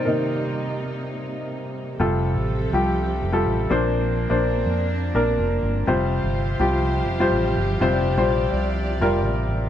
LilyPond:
<<
  \new Staff \with { instrumentName = "Upright piano" } { \time 4/4 \key f \mixolydian \tempo 4 = 124 <ees' bes'>2.~ <ees' bes'>8 r8 | <g f' a'>4 r8 <g f' g'>4 r16 <g f' a'>8. <bes d' c''>8~ | <bes d' c''>8 r16 <bes d' c''>4~ <bes d' c''>16 r8 <bes d' bes'>4 r8 | <g f' c''>4 r8 <g f' g'>4 r16 <g f' c''>4 r16 |
<g f' c''>8 r16 <g f' c''>4~ <g f' c''>16 r8 <g f' bes'>4 r8 | }
  \new Staff \with { instrumentName = "Upright piano" } { \clef bass \time 4/4 \key f \mixolydian <c ees bes>1 | c4. r2 <bes, f>8~ | <bes, f>4 r2. | c4. r2 r8 |
c4. r2 r8 | }
  \new Staff \with { instrumentName = "String section" } { \time 4/4 \key f \mixolydian << { ees'1 | a'2.~ a'8 d'8~ | d'1 | c''1 |
d''1 | } \\ { <c g bes>1 | <f c' g'>2.~ <f c' g'>8 bes8~ | bes1 | <f f' g'>1~ |
<f f' g'>1 | } >> }
  \new Staff \with { instrumentName = "Fingered electric bass" } { \clef bass \time 4/4 \key f \mixolydian r1 | f,,8. a,,8. c,4 f,,8 a,,8 bes,,8~ | bes,,8. bes,,8. f,4 bes,,8 f,,8 g,,8 | f,,8. g,,8. c,4 f,,8 a,,8 g,,8 |
f,,8. bes,,8. c,4 f,,8 a,,8 a,,8 | }
>>